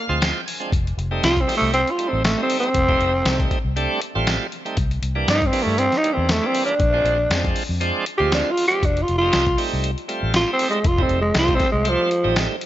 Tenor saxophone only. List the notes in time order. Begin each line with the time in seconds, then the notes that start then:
Already playing: A#3
1.25 F4
1.41 C4
1.57 A3
1.73 C4
1.91 F4
2.09 C4
2.25 A3
2.43 C4
2.60 C4
5.29 D#4
5.46 C4
5.63 A3
5.79 C4
5.97 D#4
6.13 C4
6.31 A3
6.46 C4
6.65 D4
8.18 G4
8.34 D4
8.51 F4
8.67 G4
8.85 D4
9.03 F4
9.18 F4
10.36 F4
10.53 C4
10.70 G#3
10.87 F4
11.02 C4
11.21 G#3
11.38 F4
11.55 C4
11.72 G#3
11.89 F3